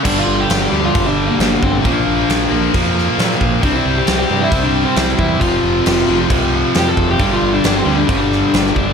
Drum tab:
CC |x---x---x---x---|x---x---x---x---|x---x---x---x---|x---x---x---x---|
SD |----o-------o---|----o-----o-oo--|----o-------oo--|----o-------o---|
BD |o-------o-----o-|o-------o-----o-|o-------o-----o-|o-------o-----o-|

CC |x---x---x---x---|
SD |----o-----o-oo--|
BD |o-------o-----o-|